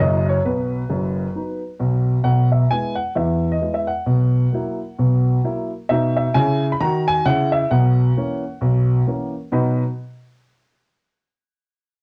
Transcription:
0.00 0.38 F#1 medium
0.00 0.37 F#2 medium
0.00 0.24 F#3 soft
0.00 0.25 A#3 soft
0.00 0.25 E4 soft
0.00 0.25 D#5 medium
0.29 0.42 C#5 medium
0.45 0.81 B1 medium
0.45 0.81 B2 medium
0.45 1.61 B4 medium
0.90 1.26 F#1 medium
0.90 1.26 F#2 medium
1.35 1.60 F#3 soft
1.35 1.60 B3 soft
1.35 1.61 D#4 soft
1.80 2.16 B1 medium
1.80 2.16 B2 medium
2.24 2.63 B1 medium
2.24 2.63 B2 medium
2.24 2.47 F#5 medium
2.52 2.68 E5 medium
2.71 2.96 G#3 soft
2.71 2.96 B3 soft
2.71 2.96 E4 soft
2.71 2.94 G#5 loud
2.95 3.12 F#5 medium
3.15 3.54 E2 medium
3.15 3.55 E3 medium
3.15 3.47 E5 medium
3.52 3.71 D#5 medium
3.61 3.86 G#3 soft
3.61 3.87 B3 soft
3.61 3.87 E4 soft
3.74 3.88 E5 medium
3.87 5.43 F#5 medium
4.06 4.45 B1 medium
4.06 4.45 B2 medium
4.52 4.78 F#3 soft
4.52 4.78 A#3 soft
4.52 4.79 E4 medium
4.98 5.37 B1 medium
4.98 5.37 B2 medium
5.44 5.69 F#3 soft
5.44 5.70 A#3 soft
5.44 5.69 E4 medium
5.89 6.26 B2 medium
5.89 6.27 D#4 medium
5.89 6.12 E5 medium
6.16 6.32 E5 medium
6.34 6.71 C#3 medium
6.34 6.72 E4 medium
6.34 6.65 G#5 loud
6.72 6.81 B5 medium
6.80 7.17 D#3 medium
6.80 7.18 F#4 medium
6.80 7.03 A#5 loud
7.07 7.23 G#5 loud
7.25 7.62 C#3 medium
7.25 7.63 E4 medium
7.25 7.49 F#5 loud
7.52 7.68 E5 medium
7.71 8.10 B1 medium
7.71 8.10 B2 medium
7.71 9.26 F#5 medium
8.17 8.42 E3 soft
8.17 8.42 A#3 soft
8.17 8.43 C#4 medium
8.61 9.00 B1 medium
8.61 9.01 B2 medium
9.07 9.32 E3 soft
9.07 9.33 A#3 soft
9.07 9.33 C#4 soft
9.52 9.81 B2 medium
9.52 9.81 F#3 medium
9.52 9.81 D#4 medium
9.52 9.81 F#4 medium
9.52 9.82 B4 medium
9.52 9.82 D#5 medium
9.52 9.82 B5 medium

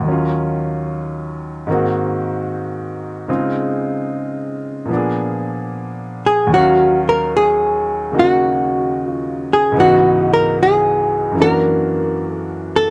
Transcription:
0.00 1.65 D#2 soft
0.00 1.67 D#3 soft
0.06 1.68 F#3 soft
0.06 1.69 C#4 soft
0.12 1.71 F4 soft
1.67 3.28 G#2 soft
1.67 3.29 D#3 soft
1.67 3.29 A#3 soft
1.71 3.28 C4 soft
1.71 3.30 F#4 soft
3.28 4.89 C#3 soft
3.28 4.89 G#3 soft
3.28 4.89 C4 soft
3.28 4.90 D#4 soft
3.28 4.90 F4 soft
4.85 6.49 A#2 soft
4.85 6.51 F3 soft
4.91 6.52 B3 soft
4.91 6.53 D4 soft
4.97 6.55 G#4 soft
6.26 6.53 G#4 medium
6.47 9.73 D#2 soft
6.47 9.74 D#3 soft
6.52 9.75 F#3 soft
6.52 9.77 C#4 soft
6.52 7.02 F#4 medium
6.58 9.78 F5 soft
7.09 7.35 A#4 medium
7.37 8.18 G#4 medium
8.12 9.74 C#3 soft
8.12 9.74 A#3 soft
8.12 9.75 D#4 soft
8.12 9.75 F#4 soft
8.19 9.08 F#4 medium
9.08 9.53 F4 medium
9.53 9.78 G#4 medium
9.72 11.33 C#2 soft
9.72 11.34 G#2 soft
9.72 11.33 E3 soft
9.79 11.37 B3 soft
9.79 11.38 D#4 soft
9.79 10.32 F#4 medium
9.84 11.39 F#4 medium
10.34 10.58 A#4 medium
10.63 11.41 G#4 medium
11.32 12.90 F#2 soft
11.32 12.90 E3 soft
11.37 12.90 A#3 soft
11.37 12.90 D4 soft
11.42 12.90 F#4 soft
11.42 12.30 A#4 medium
12.30 12.75 A4 medium
12.76 12.90 A4 medium

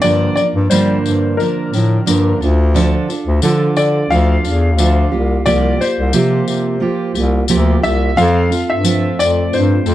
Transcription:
0.01 0.30 G2 medium
0.01 0.37 G2 medium
0.01 0.37 D3 medium
0.01 0.37 F3 medium
0.01 0.37 A#3 medium
0.01 0.37 D4 medium
0.01 0.36 A#4 medium
0.01 0.34 D5 loud
0.01 tambourine soft
0.36 0.71 A#3 soft
0.36 0.71 D4 soft
0.36 0.71 A#4 soft
0.36 0.43 D5 medium
0.36 tambourine soft
0.40 0.70 F3 soft
0.55 0.68 G2 medium
0.70 1.39 G2 medium
0.70 2.06 D3 medium
0.70 1.39 F3 medium
0.70 0.98 G3 medium
0.70 1.39 A#3 medium
0.70 1.40 D4 medium
0.70 1.39 A#4 medium
0.70 1.40 C5 medium
0.70 tambourine medium
1.04 1.38 G2 medium
1.04 tambourine soft
1.37 1.73 F3 medium
1.37 1.73 A#3 medium
1.37 1.72 D4 medium
1.37 2.36 A#4 medium
1.37 tambourine soft
1.42 1.71 A#4 medium
1.72 2.00 A2 medium
1.72 2.05 F3 soft
1.72 2.06 D4 soft
1.72 2.06 A#4 medium
1.72 tambourine soft
2.06 2.40 G2 medium
2.06 2.34 G2 loud
2.06 2.40 D3 medium
2.06 2.41 F3 medium
2.06 2.41 A#3 medium
2.06 2.41 D4 medium
2.06 2.40 A#4 medium
2.06 tambourine medium
2.41 2.96 D2 medium
2.41 2.74 D4 soft
2.41 2.75 F4 medium
2.41 2.75 A4 medium
2.41 tambourine soft
2.74 3.08 D3 medium
2.74 3.09 F3 medium
2.74 3.09 D4 loud
2.74 3.08 F4 loud
2.74 3.07 A4 loud
2.74 tambourine soft
3.08 3.42 D4 soft
3.08 3.42 F4 soft
3.08 3.42 A4 medium
3.08 tambourine soft
3.27 3.39 D2 medium
3.42 4.10 D3 medium
3.42 3.70 D3 loud
3.42 4.10 F3 medium
3.42 4.09 D4 loud
3.42 4.11 F4 loud
3.42 4.11 A4 medium
3.42 tambourine medium
3.76 4.04 D3 medium
3.76 4.12 D5 medium
3.76 tambourine soft
4.10 4.38 D2 medium
4.10 4.44 F3 medium
4.10 4.44 D4 medium
4.10 4.44 F4 medium
4.10 4.43 A4 medium
4.10 5.50 F5 loud
4.10 tambourine soft
4.44 4.79 E2 medium
4.44 4.77 D4 soft
4.44 4.78 F4 soft
4.44 4.78 A4 soft
4.44 tambourine soft
4.78 5.06 D2 loud
4.78 5.12 D3 medium
4.78 5.12 F3 medium
4.78 5.12 D4 medium
4.78 5.12 F4 medium
4.78 5.11 A4 medium
4.78 tambourine medium
5.12 5.40 C2 medium
5.12 5.45 A#3 medium
5.12 5.45 F4 medium
5.12 5.46 G4 medium
5.46 5.74 C2 medium
5.46 5.80 C3 medium
5.46 5.80 F3 medium
5.46 5.80 A#3 medium
5.46 5.79 F4 medium
5.46 5.78 G4 medium
5.46 5.81 D5 loud
5.46 tambourine medium
5.79 6.12 A#3 soft
5.79 6.13 F4 soft
5.79 6.13 G4 medium
5.79 7.12 C5 medium
5.79 tambourine soft
6.00 6.12 C2 medium
6.13 6.81 C3 medium
6.13 6.42 C3 medium
6.13 6.80 F3 medium
6.13 6.80 A#3 medium
6.13 6.81 F4 medium
6.13 6.81 G4 medium
6.13 tambourine medium
6.47 6.81 C3 medium
6.47 tambourine soft
6.80 7.15 F3 medium
6.80 7.15 A#3 medium
6.80 7.14 F4 medium
6.80 7.13 G4 medium
7.14 7.43 C2 medium
7.14 7.48 A#3 soft
7.14 7.49 F4 medium
7.14 7.49 G4 medium
7.14 tambourine soft
7.48 7.77 D2 medium
7.48 7.83 C3 medium
7.48 7.83 F3 medium
7.48 7.83 A#3 medium
7.48 7.82 F4 medium
7.48 7.81 G4 medium
7.48 tambourine medium
7.82 8.11 C2 medium
7.82 8.17 A#3 medium
7.82 8.16 F4 medium
7.82 8.16 G4 medium
7.82 8.18 E5 medium
7.82 tambourine soft
8.16 8.60 F2 loud
8.16 8.50 F3 medium
8.16 9.95 A3 medium
8.16 8.51 C4 medium
8.16 9.95 C4 medium
8.16 8.50 F4 medium
8.16 9.95 F4 medium
8.16 8.49 A4 medium
8.16 8.71 F5 loud
8.16 tambourine soft
8.50 8.83 C4 soft
8.50 8.84 F4 soft
8.50 8.84 A4 medium
8.50 tambourine soft
8.69 9.10 G2 medium
8.69 9.15 E5 medium
8.83 9.85 F3 medium
8.83 9.88 C4 medium
8.83 9.86 F4 medium
8.83 9.85 A4 medium
8.83 tambourine medium
9.19 9.46 F2 medium
9.19 9.54 D5 medium
9.19 tambourine medium
9.52 9.80 G2 medium
9.52 9.95 C5 medium
9.52 tambourine soft
9.86 9.95 F2 loud
9.86 9.95 C4 soft
9.86 9.95 F4 medium
9.86 9.95 A4 soft
9.86 tambourine soft

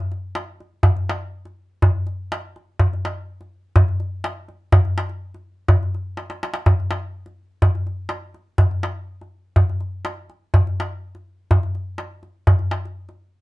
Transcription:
0.12 darbuka ka soft
0.35 darbuka tek medium
0.60 darbuka ka soft
0.83 darbuka dum medium
0.96 darbuka ka soft
1.09 darbuka tek medium
1.45 darbuka ka soft
1.82 darbuka dum medium
2.06 darbuka ka soft
2.32 darbuka tek medium
2.56 darbuka ka soft
2.79 darbuka dum medium
2.93 darbuka ka soft
3.05 darbuka tek medium
3.41 darbuka ka soft
3.76 darbuka dum medium
3.88 darbuka ka soft
4.00 darbuka ka soft
4.24 darbuka tek medium
4.48 darbuka ka soft
4.72 darbuka dum loud
4.85 darbuka ka soft
4.98 darbuka tek medium
5.09 darbuka ka soft
5.34 darbuka ka soft
5.68 darbuka dum medium
5.83 darbuka ka soft
5.94 darbuka ka soft
6.17 darbuka tek soft
6.30 darbuka ka medium
6.43 darbuka tek medium
6.54 darbuka ka medium
6.66 darbuka dum medium
6.80 darbuka ka soft
6.91 darbuka tek medium
7.26 darbuka ka soft
7.62 darbuka dum medium
7.75 darbuka ka soft
7.87 darbuka ka soft
8.09 darbuka tek medium
8.34 darbuka ka soft
8.58 darbuka dum medium
8.71 darbuka ka soft
8.83 darbuka tek medium
9.21 darbuka ka soft
9.56 darbuka dum medium
9.69 darbuka ka soft
9.80 darbuka ka soft
10.05 darbuka tek medium
10.30 darbuka ka soft
10.54 darbuka dum medium
10.67 darbuka ka soft
10.80 darbuka tek medium
11.15 darbuka ka soft
11.51 darbuka dum medium
11.63 darbuka ka soft
11.75 darbuka ka soft
11.98 darbuka tek medium
12.23 darbuka ka soft
12.47 darbuka dum medium
12.59 darbuka ka soft
12.71 darbuka tek medium
12.85 darbuka ka soft
13.09 darbuka ka soft

